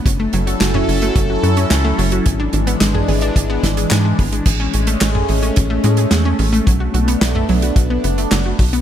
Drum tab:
CC |----------------|----------------|x---------------|----------------|
HH |x-xxx-oxx-xxx-ox|x-xxx-oxx-xxx-ox|x-xxx-oxx-xxx-ox|x-xxx-oxx-xxx-ox|
CP |----x-------x---|----x-------x---|----x-------x---|----x-------x---|
SD |----o-------o---|----o-----o-o---|----o-------o---|----o-------o---|
T2 |-----o----------|-----o----------|-----o----------|-----o----------|
BD |o-------o-------|o-------o-o---o-|o-------o-------|o-------o-----o-|